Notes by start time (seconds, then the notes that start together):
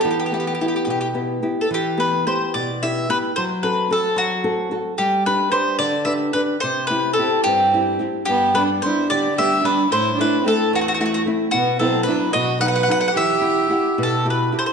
0.01 E3 B3 G4
0.11 G4
0.20 G4
0.26 G4
0.31 B3 E4 G4
0.40 G4
0.47 G4
0.55 G4
0.61 B3 E4 G4
0.68 G4
0.76 G4
0.85 B2 G4
0.90 G4
1.01 G4
1.14 B3 E4 G4
1.42 B3 E4 G4
1.61 A4
1.71 E3 G4
1.98 B3 E4 G4 B4
2.27 B3 E4 G4 C5
2.54 B2 D5
2.83 B3 E4 G4 E5
3.09 B3 E4 G4 B4
3.36 F#3 C5
3.63 C4 F#4 A4 B4
3.90 C4 F#4 A4
4.16 F#3 F#4
4.44 C4 F#4 A4
4.71 C4 F#4 A4
4.98 G3 G4
5.26 D4 G4 B4
5.51 D4 G4 B4 C5
5.79 D3 D5
6.05 D4 G4 B4 E5
6.33 D4 G4 B4
6.60 C3 C5
6.87 C4 E4 B4
6.91 G4
7.13 A4
7.18 C4 E4 G4
7.44 G2 C4 G4
7.74 C4 E4 G4
7.99 C4 E4 G4
8.25 G2 B3 G4
8.54 G3 B3 D4 B4
8.82 G3 B3 D4 E4 C5
9.09 D3 G4 D5
9.36 G3 B3 D4 G4 E5
9.63 G3 B3 D4 B4
9.90 A2 E4 C5
10.15 A3 D4
10.20 C4 E4 B4
10.42 A3 C4 E4
10.48 A4
10.70 E2 A3
10.75 F#4
10.81 F#4
10.88 F#4
10.94 F#4
11.00 A3 C4 E4 F#4
11.06 F#4
11.14 F#4
11.26 A3 C4 E4
11.51 B2 B3 F#4
11.79 F#3 B3 C4 E4 A4
12.03 D4 B4
12.07 F#3 B3 E4
12.32 B2 F#4 D#5
12.60 F#3 B3 D#4 B4 F#5
12.68 F#5
12.76 F#5
12.83 F#5
12.88 F#3 B3 D#4 F#5
13.01 F#5
13.08 F#5
13.13 E3 G4 E5
13.42 E4 G4 F#5
13.70 E4 G4 F#5
13.98 B2
14.03 A4
14.25 E4 F#4 G4
14.30 B4
14.52 E4 F#4 G4
14.59 C5
14.66 C5